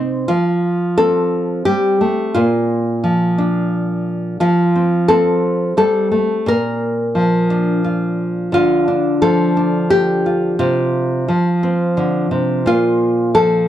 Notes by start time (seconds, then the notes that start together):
Already playing: C3 C4 D#4 C5
0.28 F3 F4
0.97 C4 A4
1.65 G3 G4
2.01 A3
2.35 A#2 F4
3.04 F3
3.38 D4
4.40 F3 F4
4.76 C4
5.08 C4 A4
5.77 G3 A4
6.11 A3
6.46 A#2 A#4
7.15 F3
7.50 D4
7.84 F4
8.52 D3 F4
8.88 D4
9.22 F3 A4
9.57 D4
9.90 G4
10.26 F4
10.59 C3 F4
11.29 F3
11.63 C4
11.97 D3
12.31 C3
12.66 A#2 F4
13.35 F3 A4